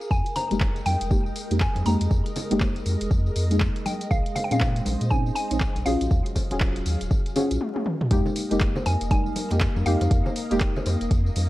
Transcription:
0.01 tambourine
0.11 sub bass F2, string machine G#3 A#4 D#5 G5, synth pluck G#5, kick, tambourine
0.26 closed hi-hat, tambourine
0.36 synth pluck A#5, open hi-hat, tambourine, low conga
0.50 sub bass F1, synth stab G#3 A#3 D#4 G4, closed hi-hat, tambourine, high conga
0.60 kick, clap, tambourine, low conga
0.76 closed hi-hat, tambourine
0.86 sub bass F2, synth pluck G5, open hi-hat, tambourine, high conga
1.01 sub bass F1, closed hi-hat, tambourine
1.10 synth stab G#3 A#3 D#4 G4, kick, tambourine
1.26 tambourine
1.36 open hi-hat, tambourine
1.51 sub bass F2, synth stab G#3 A#3 D#4 G4, closed hi-hat, tambourine
1.60 synth pluck G#5, kick, clap, tambourine
1.75 sub bass F2, closed hi-hat, tambourine, high conga
1.85 sub bass F2, synth stab G#3 A#3 D#4 G4, synth pluck A#5, open hi-hat, tambourine
2.01 sub bass F2, closed hi-hat, tambourine
2.11 sub bass F2, kick, tambourine
2.26 closed hi-hat, tambourine
2.36 open hi-hat, tambourine, low conga
2.50 sub bass F1, synth stab G#3 A#3 D#4 G4, closed hi-hat, tambourine, high conga
2.60 kick, clap, tambourine, low conga
2.76 closed hi-hat, tambourine
2.86 sub bass F2, open hi-hat, tambourine
3.01 sub bass F1, closed hi-hat, tambourine
3.11 sub bass F2, kick, tambourine
3.26 tambourine
3.36 sub bass F2, open hi-hat, tambourine
3.50 synth stab G#3 A#3 D#4 G#4, closed hi-hat, tambourine
3.60 kick, clap, tambourine
3.76 closed hi-hat, tambourine
3.86 synth pluck G5, open hi-hat, tambourine, high conga
4.01 closed hi-hat, tambourine
4.11 sub bass A#1, string machine C5, synth pluck F5, kick, tambourine
4.26 closed hi-hat, tambourine
4.36 synth pluck F5, open hi-hat, tambourine, low conga
4.44 synth pluck G5
4.50 sub bass A#2, synth stab C4 C#4 D#4 G#4, synth pluck F5, closed hi-hat, tambourine, high conga
4.60 kick, clap, tambourine, low conga
4.76 closed hi-hat, tambourine
4.85 sub bass A#1, open hi-hat, tambourine, high conga
5.01 sub bass A#2, closed hi-hat, tambourine
5.11 synth stab C4 C#4 D#4 G#4, synth pluck G#5, kick, tambourine
5.26 tambourine
5.35 synth pluck G#5, open hi-hat, tambourine
5.51 sub bass A#1, synth stab C4 C#4 D#4 G#4, closed hi-hat, tambourine
5.60 kick, clap, tambourine
5.76 sub bass A#1, closed hi-hat, tambourine, high conga
5.85 sub bass A#1, synth stab C#4 F4 F#4 G#4, synth pluck F5, open hi-hat, tambourine
6.01 sub bass A#1, closed hi-hat, tambourine
6.11 sub bass D#2, string machine F#3 G#4 F5, kick, tambourine
6.26 closed hi-hat, tambourine
6.35 kick, open hi-hat, tambourine, low conga
6.50 sub bass D#1, synth stab C#4 F4 F#4 G#4, closed hi-hat, tambourine, high conga
6.60 kick, clap, tambourine, low conga
6.76 closed hi-hat, tambourine
6.86 sub bass D#2, open hi-hat, tambourine
7.01 sub bass D#1, closed hi-hat, tambourine
7.11 kick, tambourine
7.26 closed hi-hat, tambourine
7.36 synth stab C#4 F4 F#4 G#4, open hi-hat, tambourine, low conga
7.51 sub bass A#1, closed hi-hat, tambourine
7.61 high tom
7.76 high tom
7.86 mid tom
8.01 mid tom
8.11 sub bass F2, synth stab G#3 A#3 D#4 G4, string machine A#3 A#4 D#5 F5, kick, closed hi-hat, tambourine
8.26 tambourine, low conga
8.36 open hi-hat, tambourine
8.50 sub bass F1, synth stab G#3 A#3 D#4 G4, closed hi-hat, tambourine
8.60 kick, clap, closed hi-hat, tambourine
8.76 tambourine, low conga
8.86 sub bass F2, synth pluck G#5, open hi-hat, tambourine, muted conga
9.01 sub bass F1, closed hi-hat, tambourine
9.11 synth stab G3 G#3 A#3 D#4, synth pluck G#5, kick, closed hi-hat, tambourine
9.26 tambourine
9.36 open hi-hat, tambourine, high conga
9.51 sub bass F2, synth stab G#3 A#3 D#4 G4, closed hi-hat, tambourine, muted conga
9.60 kick, clap, closed hi-hat, tambourine
9.76 sub bass F2, tambourine, high conga
9.85 sub bass F2, synth stab G#3 A#3 D#4 G4, synth pluck F5, open hi-hat, tambourine
10.01 sub bass F2, closed hi-hat, tambourine, muted conga
10.11 sub bass F2, kick, closed hi-hat, tambourine
10.26 tambourine, low conga
10.36 open hi-hat, tambourine
10.50 sub bass F1, synth stab G#3 A#3 D#4 G4, closed hi-hat, tambourine
10.60 kick, clap, closed hi-hat, tambourine
10.76 tambourine, low conga
10.86 sub bass F2, open hi-hat, tambourine, muted conga
11.01 sub bass F1, closed hi-hat, tambourine
11.11 sub bass F2, kick, closed hi-hat, tambourine
11.26 tambourine
11.36 sub bass F2, open hi-hat, tambourine, high conga

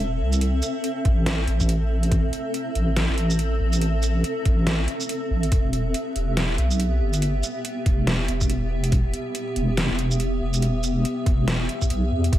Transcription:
Already playing: wobble bass E1, ambient pad C4 A4 E5
0.20 wobble bass C2
0.33 closed hi-hat, shaker
0.41 closed hi-hat
0.63 closed hi-hat, shaker
0.84 closed hi-hat
1.05 wobble bass A1, kick, closed hi-hat
1.26 snare, closed hi-hat
1.48 wobble bass A1, closed hi-hat
1.60 kick, shaker
1.69 closed hi-hat
2.03 closed hi-hat
2.11 kick, closed hi-hat
2.33 closed hi-hat
2.54 closed hi-hat
2.75 wobble bass A1, closed hi-hat
2.96 snare, closed hi-hat
3.09 wobble bass A1
3.18 closed hi-hat
3.31 shaker
3.39 closed hi-hat
3.60 wobble bass A1
3.73 closed hi-hat, shaker
3.81 closed hi-hat
4.03 closed hi-hat, shaker
4.24 closed hi-hat
4.45 wobble bass A1, kick, closed hi-hat
4.67 snare, closed hi-hat
4.88 closed hi-hat
5.01 shaker
5.09 closed hi-hat
5.31 wobble bass A1
5.43 closed hi-hat
5.52 wobble bass E1, ambient pad B3 G4 E5, kick, closed hi-hat
5.73 closed hi-hat
5.94 closed hi-hat
6.16 wobble bass E1, closed hi-hat
6.37 snare, closed hi-hat
6.58 wobble bass B1, closed hi-hat
6.71 shaker
6.80 closed hi-hat
7.01 wobble bass G1
7.14 closed hi-hat, shaker
7.22 closed hi-hat
7.43 closed hi-hat, shaker
7.65 closed hi-hat
7.86 wobble bass E1, kick, closed hi-hat
8.07 snare, closed hi-hat
8.28 wobble bass E1, closed hi-hat
8.41 kick, shaker
8.50 closed hi-hat
8.84 closed hi-hat
8.92 kick, closed hi-hat
9.14 closed hi-hat
9.35 closed hi-hat
9.56 wobble bass E1, closed hi-hat
9.77 snare, closed hi-hat
9.90 wobble bass E1
9.99 closed hi-hat
10.11 shaker
10.20 closed hi-hat
10.41 wobble bass E1
10.54 closed hi-hat, shaker
10.62 closed hi-hat
10.84 closed hi-hat, shaker
11.05 closed hi-hat
11.26 wobble bass E1, kick, closed hi-hat
11.48 snare, closed hi-hat
11.69 closed hi-hat
11.82 kick, shaker
11.90 wobble bass B1, closed hi-hat
12.11 wobble bass E2
12.24 closed hi-hat
12.33 wobble bass A1, ambient pad C4 A4, kick, closed hi-hat

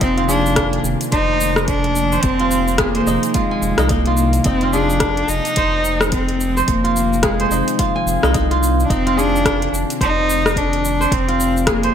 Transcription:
Already playing: ambient pad C3 D#3 F3 A#3 G#5, kora F4
0.01 analog synth bass F1, cello C4, kora D#4, kick, closed hi-hat, shaker
0.17 kora F4, closed hi-hat
0.28 cello D4, kora G#4, shaker
0.46 shaker
0.56 kick, cross-stick, closed hi-hat, shaker
0.73 closed hi-hat
0.84 analog synth bass F1, shaker
1.01 closed hi-hat, shaker
1.12 analog synth bass F1, cello D#4, kora C5, kick, closed hi-hat, shaker
1.41 shaker
1.56 cross-stick, shaker
1.67 cello D4, kick, closed hi-hat, shaker
1.84 closed hi-hat
1.96 shaker
2.12 kora C5, shaker
2.22 analog synth bass F1, cello C4, kick, closed hi-hat, shaker
2.39 kora F4, closed hi-hat
2.51 shaker
2.68 shaker
2.78 cello A#3, kora G#4, kick, cross-stick, closed hi-hat, shaker
2.95 kora C5, closed hi-hat
3.07 analog synth bass F1, kora D#4, shaker
3.23 closed hi-hat, shaker
3.29 cello A#3
3.34 cello G#3, kora F4, kick, closed hi-hat, shaker
3.51 kora G#5
3.62 analog synth bass F1, shaker
3.78 analog synth bass C2, kora D#4, cross-stick, closed hi-hat, shaker
3.89 cello A#3, kora D#4, kick, closed hi-hat, shaker
4.06 kora F4, closed hi-hat
4.17 shaker
4.33 closed hi-hat, shaker
4.44 analog synth bass F1, cello C4, kora D#4, kick, closed hi-hat, shaker
4.61 kora F4, closed hi-hat
4.73 cello D4, kora G#4, shaker
4.90 shaker
5.00 kick, cross-stick, closed hi-hat, shaker
5.17 closed hi-hat
5.28 analog synth bass F1, cello D#4, shaker
5.45 closed hi-hat, shaker
5.56 analog synth bass F1, kora C5, kick, closed hi-hat, shaker
5.85 shaker
6.01 cross-stick, shaker
6.08 ambient pad C4
6.12 cello C4, kick, closed hi-hat, shaker
6.29 closed hi-hat
6.41 shaker
6.57 kora C5, shaker
6.68 analog synth bass F1, cello A#3, kick, closed hi-hat, shaker
6.84 kora F4, closed hi-hat
6.96 shaker
7.13 shaker
7.23 cello G#3, kora G#4, kick, cross-stick, closed hi-hat, shaker
7.40 kora C5, closed hi-hat
7.51 analog synth bass F1, kora D#4, shaker
7.68 closed hi-hat, shaker
7.79 kora F4, kick, closed hi-hat, shaker
7.96 kora G#5
8.06 analog synth bass F1, shaker
8.23 analog synth bass C2, kora D#4, cross-stick, shaker
8.34 kora D#4, kick, closed hi-hat, shaker
8.51 kora F4, closed hi-hat
8.63 shaker
8.80 shaker
8.85 cello D4
8.90 analog synth bass F1, cello C4, kora D#4, kick, closed hi-hat, shaker
9.06 kora F4, closed hi-hat
9.17 cello D4, kora G#4, shaker
9.36 shaker
9.46 kick, cross-stick, closed hi-hat, shaker
9.62 closed hi-hat
9.73 analog synth bass F1, shaker
9.90 closed hi-hat, shaker
10.01 analog synth bass F1, cello D#4, kora C5, kick, closed hi-hat, shaker
10.30 shaker
10.46 cross-stick, shaker
10.56 cello D4, kick, closed hi-hat, shaker
10.73 closed hi-hat
10.85 shaker
11.01 kora C5, shaker
11.12 analog synth bass F1, cello C4, kick, closed hi-hat, shaker
11.28 kora F4, closed hi-hat
11.40 shaker
11.57 shaker
11.67 cello A#3, kora G#4, kick, cross-stick, closed hi-hat, shaker
11.83 kora C5, closed hi-hat

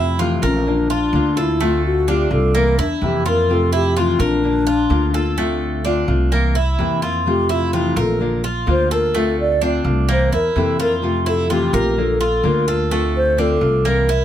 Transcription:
Already playing: upright bass F2, nylon-string guitar C3 A3 C4 F4, cuban tres E4
0.19 nylon-string guitar C3 E3 A3 C4 F4, cuban tres F4
0.42 upright bass A#1, nylon-string guitar A3 C4 F4, alto flute C#4, cuban tres A#4
0.66 nylon-string guitar D3 A#3 D4 F4, alto flute D4
0.90 cuban tres F4, muted nylon-string guitar stroke
1.13 upright bass D2, nylon-string guitar D3 A#3 D4 F4
1.37 nylon-string guitar A#3 D4 F4, alto flute E4, cuban tres A4
1.60 nylon-string guitar D3 A3 C4 F4, cuban tres A3, alto flute F4
1.85 alto flute F#4
2.07 nylon-string guitar D3 A3 C4 F4, cuban tres D4, alto flute G4
2.31 upright bass C2, nylon-string guitar A3 C4 F4, alto flute A4
2.55 nylon-string guitar E3 A#3 C4 E4, cuban tres A#3, alto flute A#4
2.78 upright bass E2, alto flute D4, cuban tres E4, muted nylon-string guitar stroke
3.01 upright bass F2, nylon-string guitar C3 E3 A#3 C4 E4, alto flute G4
3.26 nylon-string guitar A#3 C4 E4, cuban tres F4, alto flute A#4
3.49 nylon-string guitar C3 A3 C4 F4, alto flute A4
3.73 cuban tres E4, alto flute G4
3.96 nylon-string guitar C3 E3 A3 C4 F4, cuban tres F4, alto flute F4
4.19 upright bass A#1, nylon-string guitar A3 C4 F4, alto flute D4, cuban tres A#4
4.43 nylon-string guitar D3 A#3 D4 F4
4.67 cuban tres F4, muted nylon-string guitar stroke
4.90 upright bass D2, nylon-string guitar D3 A#3 D4 F4
5.13 nylon-string guitar A#3 D4 F4, cuban tres A4
5.37 nylon-string guitar D3 A3 C4 F4, cuban tres A3
5.85 nylon-string guitar D3 A3 C4 F4, cuban tres D4
6.08 upright bass C2, nylon-string guitar A3 C4 F4
6.32 nylon-string guitar E3 A#3 C4 E4, cuban tres A#3
6.55 cuban tres E4, muted nylon-string guitar stroke
6.78 upright bass F2, nylon-string guitar C3 E3 A#3 C4 E4
7.02 nylon-string guitar A#3 C4 E4, cuban tres F4
7.26 nylon-string guitar C3 A3 C4 F4, alto flute G4
7.49 cuban tres E4, alto flute F4
7.73 nylon-string guitar C3 E3 A3 C4 F4, alto flute E4, cuban tres F4
7.96 upright bass A#1, nylon-string guitar A3 C4 F4, alto flute A4, cuban tres A#4
8.20 nylon-string guitar D3 A#3 D4 F4
8.43 cuban tres F4, muted nylon-string guitar stroke
8.66 upright bass D2, nylon-string guitar D3 A#3 D4 F4
8.71 alto flute C5
8.90 nylon-string guitar A#3 D4 F4, cuban tres A4, alto flute A#4
9.13 nylon-string guitar D3 A3 C4 F4, cuban tres A3, alto flute A4
9.40 alto flute D5
9.61 nylon-string guitar D3 A3 C4 F4, cuban tres D4
9.84 upright bass C2, nylon-string guitar A3 C4 F4
10.09 nylon-string guitar E3 A#3 C4 E4, cuban tres A#3, alto flute C5
10.32 upright bass E2, cuban tres E4, alto flute A#4, muted nylon-string guitar stroke
10.56 upright bass F2, nylon-string guitar C3 E3 A#3 C4 E4, alto flute A4
10.79 nylon-string guitar A#3 C4 E4, cuban tres F4, alto flute A#4
11.02 nylon-string guitar C3 A3 C4 F4
11.26 cuban tres E4, alto flute A4
11.49 nylon-string guitar C3 E3 A3 C4 F4, cuban tres F4, alto flute G4
11.73 upright bass A#1, nylon-string guitar A3 C4 F4, cuban tres A#4
11.97 nylon-string guitar D3 A#3 D4 F4, alto flute A4
12.20 cuban tres F4, muted nylon-string guitar stroke
12.43 upright bass D2, nylon-string guitar D3 A#3 D4 F4, alto flute A#4
12.67 nylon-string guitar A#3 D4 F4, cuban tres A4
12.90 nylon-string guitar D3 A3 C4 F4, cuban tres A3
13.16 alto flute C5
13.37 nylon-string guitar D3 A3 C4 F4, cuban tres D4, alto flute A4
13.61 upright bass C2, nylon-string guitar A3 C4 F4
13.84 nylon-string guitar E3 A#3 C4 E4, cuban tres A#3, alto flute A#4
14.08 cuban tres E4, muted nylon-string guitar stroke

